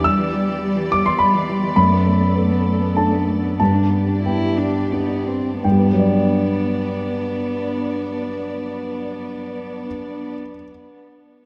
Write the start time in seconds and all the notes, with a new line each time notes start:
Already playing: B3 D4 G4 D5
0.03 G3 E6
0.19 E3
0.34 G3
0.48 E3
0.62 G3
0.76 E3
0.91 G3 D6
1.05 E3 C6
1.19 G3 B5
1.34 E3
1.49 G3
1.63 E3
1.76 F#2 A3 A4 B5
1.92 B3
2.07 A3
2.21 B3
2.35 A3 B3
2.50 B3
2.66 A3
2.81 B3
2.96 A3 D4 A4 A5
3.12 B3
3.26 A3
3.42 B3
3.58 G2 B3 G4 D5 A5
3.75 D4
3.90 B3
4.08 D4
4.24 B3 E4 G5
4.58 D4
4.92 B3 D4 G4
5.27 C4
5.63 G2 B3 D4 D5 G5
5.72 G3
5.79 B3
5.86 D4
5.93 F#3
5.99 D5